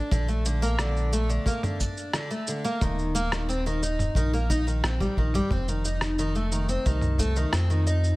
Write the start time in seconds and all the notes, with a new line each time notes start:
0.11 A#1 D3, kick, shaker
0.28 A3, shaker
0.45 D3, shaker
0.62 A#3, shaker
0.79 D3, cross-stick, shaker
0.96 shaker
1.13 A3, shaker
1.29 D3, shaker
1.46 A#3, kick, shaker
1.63 D3, mid tom, shaker
1.80 D4, kick, shaker
1.97 shaker
2.13 D3, cross-stick, shaker
2.31 A3, shaker
2.47 D3, shaker
2.64 A#3, shaker
2.81 D#1 D#3, kick, shaker
2.99 shaker
3.15 A#3, shaker
3.32 D#3, cross-stick, shaker
3.49 C4, shaker
3.66 D#3, shaker
3.83 D#4, shaker
3.99 mid tom, shaker
4.15 A#1 D#3, kick, shaker
4.33 A#3, shaker
4.50 D#4, kick, shaker
4.67 D#3, shaker
4.84 A#1 C4, cross-stick, shaker
5.00 G3, kick, shaker
5.17 A#1 D#3, kick
5.34 G3, mid tom, shaker
5.51 F1 C4, kick
5.68 D#3, shaker
5.85 D#4, shaker
6.01 cross-stick, shaker
6.19 D#3, shaker
6.35 A3, shaker
6.52 D#3, shaker
6.69 C4, shaker
6.86 C2 D#3, kick, shaker
7.01 mid tom, shaker
7.18 A3, kick, shaker
7.36 D#3, shaker
7.53 F2 C4, cross-stick, shaker
7.70 D#3, shaker
7.87 D#4, shaker
8.04 shaker